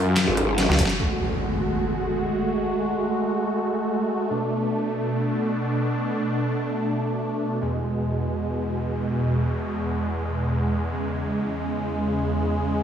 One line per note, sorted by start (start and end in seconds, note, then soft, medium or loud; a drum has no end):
0.00 0.26 F#2 loud
0.00 0.96 F#3 medium
0.00 0.95 C#4 medium
0.00 0.96 F4 medium
0.17 snare loud
0.17 clap medium
0.17 closed hi-hat medium
0.28 0.67 G#1 medium
0.37 cross-stick medium
0.37 closed hi-hat medium
0.58 snare medium
0.58 closed hi-hat medium
0.69 0.77 C#2 loud
0.69 snare medium
0.79 0.88 F#1 loud
0.79 kick medium
0.79 open hi-hat loud
0.85 snare loud
0.90 closed hi-hat soft
0.99 4.27 G#3 medium
0.99 7.57 A3 medium
0.99 4.27 F#4 medium
0.99 impact medium
4.30 7.58 B2 medium
4.30 7.58 D4 medium
7.61 12.83 E2 medium
7.61 10.89 B2 medium
7.61 12.83 G#3 medium
10.92 12.83 C#3 medium